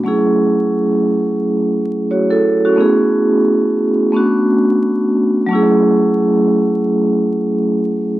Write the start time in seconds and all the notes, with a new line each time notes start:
0.04 F#3 A3 C#4 E4
0.08 G#4
2.11 F#4 C#5
2.30 E4 A4
2.65 C#4 F#4
2.76 A3 B3 C#4 E4
2.80 G#4
4.12 A3 B3 C#4 D4
4.17 F#4
5.47 F#3 A3
5.51 C#4 E4
5.55 G#4